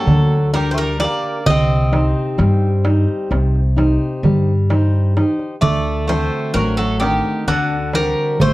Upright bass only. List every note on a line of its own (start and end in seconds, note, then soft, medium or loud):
0.07 1.04 D2 loud
1.47 2.12 C2 loud
2.39 3.04 G2 loud
3.31 3.96 C2 loud
4.23 5.21 G2 loud
5.62 6.27 D2 loud
6.54 7.19 A1 loud
7.47 8.12 D2 medium
8.40 8.53 A1 loud